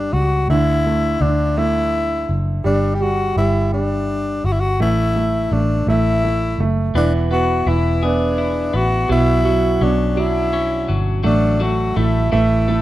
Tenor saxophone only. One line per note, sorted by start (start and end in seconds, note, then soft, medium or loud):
0.00 0.14 D4 medium
0.13 0.49 F#4 medium
0.50 1.23 E4 medium
1.21 1.59 D4 medium
1.58 2.38 E4 medium
2.66 2.96 D4 medium
2.94 3.03 G4 medium
3.02 3.37 F#4 medium
3.37 3.70 E4 medium
3.74 4.47 D4 medium
4.45 4.54 F#4 medium
4.52 4.62 E4 medium
4.60 4.81 F#4 medium
4.82 5.54 E4 medium
5.52 5.88 D4 medium
5.89 6.64 E4 medium
6.97 7.12 D4 medium
7.32 7.70 F#4 medium
7.68 8.06 E4 medium
8.05 8.77 D4 medium
8.76 9.11 F#4 medium
9.11 9.84 E4 medium
9.83 10.21 D4 medium
10.19 10.99 E4 medium
11.25 11.64 D4 medium
11.63 11.99 F#4 medium
11.97 12.31 E4 medium
12.32 12.82 E4 medium